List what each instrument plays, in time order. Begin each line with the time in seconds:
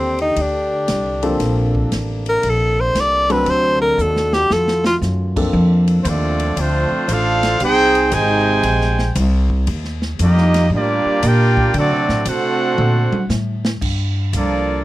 Already playing: upright bass D#2, trombone section D3 D4 G4 A4, tenor saxophone C4
0.19 tenor saxophone D#4, ride
0.36 upright bass D2, ride
0.42 tenor saxophone D4
0.88 upright bass C2, snare, hi-hat pedal, ride
1.23 grand piano F3 A#3 C4 D4 A4, ride
1.40 upright bass A#1, trombone section C3 A#3, snare, ride
1.75 kick
1.92 upright bass A1, snare, hi-hat pedal, ride
2.26 tenor saxophone A#4, ride
2.43 upright bass A#1, ride
2.50 tenor saxophone A4
2.81 tenor saxophone C5
2.95 upright bass C2, snare, hi-hat pedal, ride
3.01 tenor saxophone D5
3.30 grand piano F#3 A3 C4 D4 A4, tenor saxophone B4, ride
3.46 upright bass D2, trombone section A3 D4 F#4, tenor saxophone C5, ride
3.82 tenor saxophone A#4
3.98 upright bass D#2, tenor saxophone A4, hi-hat pedal
4.16 snare
4.33 tenor saxophone G4, snare
4.50 upright bass F2, trombone section D#3 A3 F4, tenor saxophone A4, snare
4.68 snare
4.85 tenor saxophone F4, snare
5.01 upright bass F#2, snare, hi-hat pedal
5.36 grand piano F3 A#3 C4 D4 A4, kick, crash
5.53 upright bass F2
5.88 ride
6.02 upright bass D#2, trombone section F3 A3 D4, trumpet section C5, hi-hat pedal, ride
6.07 trumpet section C4 F4 A4 D5
6.40 ride
6.56 upright bass D2, trombone section F3 A3 C4, trumpet section A3 D4 F4 C5, ride
6.91 muted upright bass stroke
7.08 upright bass A1, trombone section A3 D4 F4, trumpet section D4 A4 C5 F5, hi-hat pedal, ride
7.43 snare, ride
7.59 upright bass C2, trombone section C4 D#4 G#4, trumpet section C5, ride
7.63 trumpet section D#4 G#4 G5
7.95 ride
8.11 upright bass G#1, trombone section C3 D#3 G#3, trumpet section D#4 C5 G5 G#5, hi-hat pedal, ride
8.63 upright bass A#1, ride
8.81 snare
8.99 snare
9.15 upright bass C2, hi-hat pedal, ride
9.50 kick
9.67 upright bass D#2, ride
9.84 snare
10.02 snare
10.19 upright bass F2, trombone section G3 A#3 D#4, trumpet section A#3 F4 G4 D#5, hi-hat pedal, ride
10.38 snare
10.54 snare, ride
10.70 upright bass A2, trombone section G3 A#3 D4
10.74 trumpet section A#3 F4 G4 D5
11.05 muted upright bass stroke
11.23 upright bass A#2, trombone section A#3 D4 G4, trumpet section F4 A#4 D5 G5, hi-hat pedal, ride
11.57 kick
11.74 upright bass D3, trombone section F#3 A3 D4, trumpet section C4 F#4 A4 D5, ride
11.91 upright bass C3
12.09 upright bass A2, snare
12.25 upright bass C3, trombone section A3 C4 F#4, trumpet section D4 A4 C5 F#5, hi-hat pedal, ride
12.78 upright bass A#2, mid tom
13.12 muted upright bass stroke, high tom
13.29 upright bass A2, snare, hi-hat pedal
13.65 snare
13.81 upright bass G2, kick, crash
14.33 upright bass C2, trombone section F3 A#3 D4, trumpet section A#3 F4 A4 D5, hi-hat pedal, ride